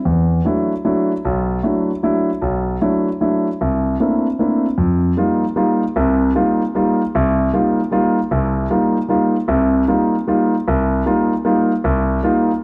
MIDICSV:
0, 0, Header, 1, 2, 480
1, 0, Start_track
1, 0, Tempo, 392927
1, 67, Time_signature, 3, 2, 24, 8
1, 15436, End_track
2, 0, Start_track
2, 0, Title_t, "Grand piano"
2, 0, Program_c, 0, 0
2, 66, Note_on_c, 0, 40, 56
2, 481, Note_off_c, 0, 40, 0
2, 549, Note_on_c, 0, 54, 44
2, 554, Note_on_c, 0, 62, 40
2, 557, Note_on_c, 0, 57, 42
2, 562, Note_on_c, 0, 64, 53
2, 872, Note_off_c, 0, 54, 0
2, 874, Note_off_c, 0, 62, 0
2, 876, Note_off_c, 0, 57, 0
2, 879, Note_off_c, 0, 64, 0
2, 1034, Note_on_c, 0, 54, 49
2, 1035, Note_on_c, 0, 57, 43
2, 1040, Note_on_c, 0, 64, 54
2, 1043, Note_on_c, 0, 62, 46
2, 1355, Note_off_c, 0, 54, 0
2, 1355, Note_off_c, 0, 57, 0
2, 1357, Note_off_c, 0, 64, 0
2, 1359, Note_off_c, 0, 62, 0
2, 1524, Note_on_c, 0, 35, 63
2, 1931, Note_off_c, 0, 35, 0
2, 1994, Note_on_c, 0, 57, 41
2, 1999, Note_on_c, 0, 54, 49
2, 2002, Note_on_c, 0, 62, 44
2, 2005, Note_on_c, 0, 64, 46
2, 2314, Note_off_c, 0, 57, 0
2, 2317, Note_off_c, 0, 54, 0
2, 2319, Note_off_c, 0, 62, 0
2, 2320, Note_off_c, 0, 64, 0
2, 2481, Note_on_c, 0, 54, 49
2, 2481, Note_on_c, 0, 57, 43
2, 2486, Note_on_c, 0, 62, 45
2, 2487, Note_on_c, 0, 64, 57
2, 2798, Note_off_c, 0, 54, 0
2, 2798, Note_off_c, 0, 57, 0
2, 2801, Note_off_c, 0, 62, 0
2, 2801, Note_off_c, 0, 64, 0
2, 2952, Note_on_c, 0, 35, 60
2, 3364, Note_off_c, 0, 35, 0
2, 3436, Note_on_c, 0, 54, 48
2, 3437, Note_on_c, 0, 57, 43
2, 3442, Note_on_c, 0, 64, 54
2, 3444, Note_on_c, 0, 62, 41
2, 3756, Note_off_c, 0, 54, 0
2, 3756, Note_off_c, 0, 57, 0
2, 3758, Note_off_c, 0, 64, 0
2, 3760, Note_off_c, 0, 62, 0
2, 3916, Note_on_c, 0, 54, 46
2, 3922, Note_on_c, 0, 57, 43
2, 3922, Note_on_c, 0, 62, 43
2, 3924, Note_on_c, 0, 64, 51
2, 4235, Note_off_c, 0, 54, 0
2, 4238, Note_off_c, 0, 57, 0
2, 4239, Note_off_c, 0, 62, 0
2, 4239, Note_off_c, 0, 64, 0
2, 4409, Note_on_c, 0, 36, 54
2, 4813, Note_off_c, 0, 36, 0
2, 4887, Note_on_c, 0, 57, 44
2, 4890, Note_on_c, 0, 60, 41
2, 4894, Note_on_c, 0, 58, 43
2, 4895, Note_on_c, 0, 62, 41
2, 4901, Note_on_c, 0, 64, 48
2, 5201, Note_off_c, 0, 57, 0
2, 5202, Note_off_c, 0, 60, 0
2, 5204, Note_off_c, 0, 58, 0
2, 5205, Note_off_c, 0, 62, 0
2, 5208, Note_off_c, 0, 64, 0
2, 5365, Note_on_c, 0, 57, 45
2, 5367, Note_on_c, 0, 58, 43
2, 5372, Note_on_c, 0, 62, 42
2, 5375, Note_on_c, 0, 60, 41
2, 5377, Note_on_c, 0, 64, 49
2, 5680, Note_off_c, 0, 57, 0
2, 5681, Note_off_c, 0, 58, 0
2, 5683, Note_off_c, 0, 62, 0
2, 5685, Note_off_c, 0, 60, 0
2, 5686, Note_off_c, 0, 64, 0
2, 5837, Note_on_c, 0, 41, 64
2, 6246, Note_off_c, 0, 41, 0
2, 6317, Note_on_c, 0, 55, 51
2, 6323, Note_on_c, 0, 58, 46
2, 6330, Note_on_c, 0, 63, 44
2, 6330, Note_on_c, 0, 65, 54
2, 6635, Note_off_c, 0, 55, 0
2, 6638, Note_off_c, 0, 58, 0
2, 6641, Note_off_c, 0, 63, 0
2, 6641, Note_off_c, 0, 65, 0
2, 6792, Note_on_c, 0, 55, 54
2, 6792, Note_on_c, 0, 58, 47
2, 6798, Note_on_c, 0, 63, 48
2, 6805, Note_on_c, 0, 65, 57
2, 7112, Note_off_c, 0, 55, 0
2, 7112, Note_off_c, 0, 58, 0
2, 7115, Note_off_c, 0, 63, 0
2, 7119, Note_off_c, 0, 65, 0
2, 7280, Note_on_c, 0, 36, 68
2, 7280, Note_on_c, 0, 48, 64
2, 7687, Note_off_c, 0, 36, 0
2, 7687, Note_off_c, 0, 48, 0
2, 7761, Note_on_c, 0, 55, 51
2, 7763, Note_on_c, 0, 63, 45
2, 7767, Note_on_c, 0, 58, 44
2, 7768, Note_on_c, 0, 65, 59
2, 8076, Note_off_c, 0, 55, 0
2, 8077, Note_off_c, 0, 63, 0
2, 8079, Note_off_c, 0, 58, 0
2, 8079, Note_off_c, 0, 65, 0
2, 8246, Note_on_c, 0, 55, 54
2, 8250, Note_on_c, 0, 58, 49
2, 8253, Note_on_c, 0, 63, 47
2, 8257, Note_on_c, 0, 65, 59
2, 8558, Note_off_c, 0, 55, 0
2, 8560, Note_off_c, 0, 58, 0
2, 8562, Note_off_c, 0, 63, 0
2, 8564, Note_off_c, 0, 65, 0
2, 8734, Note_on_c, 0, 36, 68
2, 9133, Note_off_c, 0, 36, 0
2, 9204, Note_on_c, 0, 55, 54
2, 9205, Note_on_c, 0, 58, 45
2, 9212, Note_on_c, 0, 63, 49
2, 9212, Note_on_c, 0, 65, 58
2, 9517, Note_off_c, 0, 55, 0
2, 9517, Note_off_c, 0, 58, 0
2, 9520, Note_off_c, 0, 65, 0
2, 9521, Note_off_c, 0, 63, 0
2, 9667, Note_on_c, 0, 55, 51
2, 9673, Note_on_c, 0, 63, 50
2, 9676, Note_on_c, 0, 58, 51
2, 9680, Note_on_c, 0, 65, 61
2, 9988, Note_off_c, 0, 55, 0
2, 9991, Note_off_c, 0, 63, 0
2, 9992, Note_off_c, 0, 58, 0
2, 9994, Note_off_c, 0, 65, 0
2, 10152, Note_on_c, 0, 48, 63
2, 10155, Note_on_c, 0, 36, 64
2, 10561, Note_off_c, 0, 48, 0
2, 10563, Note_off_c, 0, 36, 0
2, 10632, Note_on_c, 0, 55, 53
2, 10636, Note_on_c, 0, 65, 54
2, 10638, Note_on_c, 0, 63, 46
2, 10639, Note_on_c, 0, 58, 48
2, 10950, Note_off_c, 0, 55, 0
2, 10952, Note_off_c, 0, 65, 0
2, 10953, Note_off_c, 0, 63, 0
2, 10954, Note_off_c, 0, 58, 0
2, 11098, Note_on_c, 0, 55, 52
2, 11109, Note_on_c, 0, 58, 49
2, 11110, Note_on_c, 0, 63, 48
2, 11115, Note_on_c, 0, 65, 58
2, 11423, Note_off_c, 0, 55, 0
2, 11429, Note_off_c, 0, 58, 0
2, 11429, Note_off_c, 0, 63, 0
2, 11432, Note_off_c, 0, 65, 0
2, 11580, Note_on_c, 0, 36, 65
2, 11581, Note_on_c, 0, 48, 61
2, 11995, Note_off_c, 0, 36, 0
2, 11995, Note_off_c, 0, 48, 0
2, 12069, Note_on_c, 0, 55, 51
2, 12071, Note_on_c, 0, 63, 50
2, 12073, Note_on_c, 0, 58, 46
2, 12075, Note_on_c, 0, 65, 56
2, 12389, Note_off_c, 0, 55, 0
2, 12390, Note_off_c, 0, 63, 0
2, 12391, Note_off_c, 0, 58, 0
2, 12392, Note_off_c, 0, 65, 0
2, 12550, Note_on_c, 0, 55, 56
2, 12554, Note_on_c, 0, 58, 51
2, 12559, Note_on_c, 0, 63, 52
2, 12561, Note_on_c, 0, 65, 61
2, 12870, Note_off_c, 0, 55, 0
2, 12871, Note_off_c, 0, 58, 0
2, 12874, Note_off_c, 0, 63, 0
2, 12875, Note_off_c, 0, 65, 0
2, 13041, Note_on_c, 0, 36, 70
2, 13447, Note_off_c, 0, 36, 0
2, 13509, Note_on_c, 0, 55, 55
2, 13513, Note_on_c, 0, 63, 48
2, 13515, Note_on_c, 0, 58, 50
2, 13520, Note_on_c, 0, 65, 59
2, 13829, Note_off_c, 0, 55, 0
2, 13832, Note_off_c, 0, 58, 0
2, 13832, Note_off_c, 0, 63, 0
2, 13835, Note_off_c, 0, 65, 0
2, 13984, Note_on_c, 0, 58, 52
2, 13986, Note_on_c, 0, 55, 52
2, 13992, Note_on_c, 0, 63, 52
2, 13998, Note_on_c, 0, 65, 62
2, 14307, Note_off_c, 0, 58, 0
2, 14308, Note_off_c, 0, 55, 0
2, 14311, Note_off_c, 0, 63, 0
2, 14314, Note_off_c, 0, 65, 0
2, 14466, Note_on_c, 0, 36, 68
2, 14879, Note_off_c, 0, 36, 0
2, 14942, Note_on_c, 0, 55, 54
2, 14951, Note_on_c, 0, 58, 52
2, 14955, Note_on_c, 0, 63, 49
2, 14956, Note_on_c, 0, 65, 58
2, 15267, Note_off_c, 0, 55, 0
2, 15271, Note_off_c, 0, 58, 0
2, 15273, Note_off_c, 0, 63, 0
2, 15274, Note_off_c, 0, 65, 0
2, 15436, End_track
0, 0, End_of_file